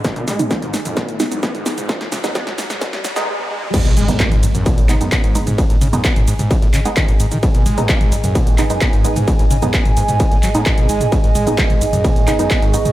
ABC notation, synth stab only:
X:1
M:4/4
L:1/16
Q:1/4=130
K:G#phr
V:1 name="Synth stab"
z3 [G,B,D] z6 [G,B,D] [G,B,D] z2 [G,B,D]2 | z3 [G,B,D] z6 z [G,B,D] z4 | z3 [G,B,D] z6 [G,B,D] [G,B,D] z2 [G,B,D]2 | z3 [G,B,D] z6 z [G,B,D] z4 |
z3 [G,B,D] z6 [G,B,D] [G,B,D] z2 [G,B,D]2 | z3 [G,B,D] z6 z [G,B,D] z4 | z3 [G,B,D] z6 [G,B,D] [G,B,D] z2 [G,B,D]2 |]